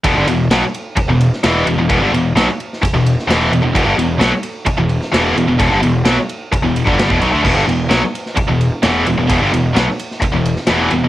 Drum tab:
CC |----------------|----------------|----------------|----------------|
RD |x-x-x-x-x-x-x-x-|x-x-x-x-x-x-x-x-|x-x-x-x-x-x-x-x-|x-x-x-x-x-x-x-x-|
SD |----o------oo---|----o--o---oo---|----o------oo---|----o------oo---|
BD |o-------o-------|o-------o-------|o-------o-------|o-------o--o-o--|

CC |x---------------|----------------|
RD |--x-x-x-x-x-x-x-|x-x-x-x-x-x-x-x-|
SD |----o--o----o---|----o--o---oo---|
BD |o-------o-------|o-------o-------|